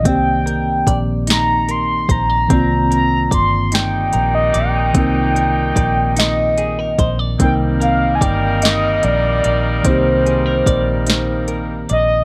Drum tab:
HH |xxxxxx|xxxxxx|xxxxxx|xxxxxx|
SD |---o--|---o--|---o--|---o--|
BD |o-o--o|o-o---|o-o--o|o-o---|

HH |xxxxxx|
SD |---o--|
BD |o-o---|